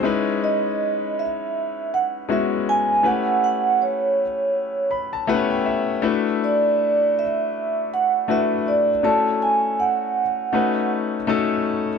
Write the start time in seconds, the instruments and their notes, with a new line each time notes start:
0.03 grand piano G#3 C#4 D#4 E4 B4
0.44 vibraphone D#5
1.19 vibraphone E5
1.94 vibraphone F#5
2.29 grand piano G#3 B3 C#4 E4 F#4, vibraphone E5
2.69 vibraphone G#5
3.03 grand piano A3 C#4 E4 G4 B4, vibraphone F#5
3.44 vibraphone F#5
3.82 vibraphone C#5
4.91 grand piano B5
5.13 grand piano A5
5.27 grand piano A3 B3 E4 G4 B4 F#5
5.34 grand piano C#4
5.50 grand piano G5
5.66 grand piano E5
6.02 grand piano A3 D4 E4 F#4 B4
6.44 vibraphone D5
7.19 vibraphone E5
7.94 vibraphone F#5
8.28 grand piano A3 D4 E4 F#4 B4, vibraphone E5
8.68 vibraphone D5
9.03 grand piano A3 C#4 E4 F#4 A4, vibraphone A5
9.42 vibraphone G#5
9.80 vibraphone F#5
10.53 grand piano A3 C#4 D#4 F#4 B4
11.27 grand piano A3 C#4 D#4 F#4 A4